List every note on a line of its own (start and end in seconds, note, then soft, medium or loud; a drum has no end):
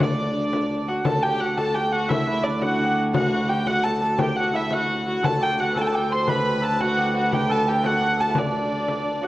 0.00 1.05 D2 medium
0.00 2.43 D4 medium
0.00 0.87 D4 medium
0.00 0.49 E4 medium
0.00 0.88 F#4 medium
0.00 0.89 D5 medium
0.00 frame drum loud
0.53 frame drum medium
0.88 1.04 F#4 medium
0.88 1.29 F#4 medium
0.88 1.05 F#5 medium
0.88 frame drum soft
1.05 5.23 D2 medium
1.05 1.57 A4 medium
1.05 1.21 A4 medium
1.05 1.23 A5 medium
1.05 frame drum medium
1.23 1.46 G4 medium
1.23 1.56 G4 medium
1.23 1.40 G5 medium
1.40 1.80 F#4 medium
1.40 1.58 F#5 medium
1.57 1.76 A4 medium
1.57 3.83 A4 medium
1.57 1.75 A5 loud
1.57 frame drum medium
1.74 1.97 G4 medium
1.74 1.90 G4 medium
1.74 1.92 G5 medium
1.74 frame drum soft
1.91 2.10 F#4 medium
1.91 2.61 F#4 medium
1.91 2.09 F#5 medium
2.09 2.27 E4 medium
2.09 2.26 E4 medium
2.09 2.27 E5 medium
2.09 frame drum medium
2.27 4.53 E4 medium
2.27 2.48 E4 medium
2.27 2.44 E5 loud
2.43 6.17 D4 medium
2.43 2.65 D4 medium
2.43 2.62 D5 medium
2.61 2.89 F#4 medium
2.61 3.02 F#4 medium
2.61 2.99 F#5 medium
2.61 frame drum medium
2.80 3.19 G4 medium
2.80 frame drum soft
3.13 3.30 F#4 medium
3.13 3.53 F#4 medium
3.13 3.49 F#5 medium
3.13 frame drum loud
3.30 3.54 F#4 medium
3.48 3.73 G4 medium
3.48 3.67 G4 medium
3.48 3.67 G5 medium
3.67 4.24 F#4 medium
3.67 3.86 F#4 medium
3.67 3.84 F#5 loud
3.67 frame drum medium
3.84 4.01 A4 medium
3.84 4.02 A5 medium
3.84 frame drum soft
4.01 5.22 A4 medium
4.01 4.18 A4 medium
4.01 4.19 A5 medium
4.17 4.77 G4 medium
4.17 4.35 G4 medium
4.17 4.36 G5 medium
4.17 frame drum medium
4.36 4.54 F#4 medium
4.36 4.55 F#5 medium
4.53 8.01 E4 medium
4.53 4.62 E4 medium
4.53 4.73 E5 medium
4.70 5.06 F#4 medium
4.70 5.04 F#4 medium
4.70 5.08 F#5 loud
4.70 frame drum medium
4.88 frame drum soft
5.06 5.45 F#4 medium
5.06 5.26 F#4 medium
5.06 5.25 F#5 medium
5.06 frame drum soft
5.23 9.27 D2 medium
5.23 5.74 A4 medium
5.23 5.61 A4 medium
5.23 5.43 A5 loud
5.23 frame drum medium
5.39 5.63 G4 medium
5.39 5.60 G5 medium
5.57 5.98 F#4 medium
5.57 5.72 F#4 medium
5.57 5.77 F#5 loud
5.70 5.78 B4 medium
5.74 5.82 A4 medium
5.74 6.11 A4 medium
5.74 5.81 A5 loud
5.74 frame drum medium
5.81 6.61 A4 medium
5.81 5.87 G5 medium
5.87 5.95 A5 loud
5.92 6.85 G4 medium
5.92 6.12 G5 medium
5.92 frame drum soft
6.09 6.33 C5 medium
6.09 6.30 C5 medium
6.09 6.29 C6 loud
6.27 6.44 B4 medium
6.27 6.80 B4 loud
6.27 6.63 B5 medium
6.27 frame drum medium
6.45 9.18 B4 medium
6.61 7.49 A4 medium
6.61 6.81 A5 loud
6.79 7.03 F#4 medium
6.79 7.13 F#4 medium
6.79 7.17 F#5 loud
6.79 frame drum medium
6.97 7.21 G4 medium
6.97 frame drum soft
7.14 7.33 F#4 medium
7.14 7.38 F#4 medium
7.14 7.34 F#5 medium
7.32 7.49 G4 medium
7.32 7.66 G4 medium
7.32 7.51 G5 loud
7.32 frame drum medium
7.49 7.65 A4 loud
7.49 8.17 A4 medium
7.49 7.68 A5 loud
7.66 7.89 G4 medium
7.66 7.83 G4 medium
7.66 7.86 G5 loud
7.83 8.06 F#4 medium
7.83 8.22 F#4 medium
7.83 8.21 F#5 loud
7.83 frame drum medium
8.00 9.27 G4 medium
8.00 frame drum soft
8.17 9.27 A4 medium
8.17 8.32 A4 medium
8.17 8.38 A5 medium
8.30 8.38 E4 medium
8.34 9.27 D4 medium
8.34 9.22 D4 medium
8.34 9.23 D5 medium
8.34 frame drum medium
8.54 frame drum soft
8.88 frame drum medium
9.05 frame drum soft
9.21 9.27 F#4 medium
9.21 9.27 F#5 medium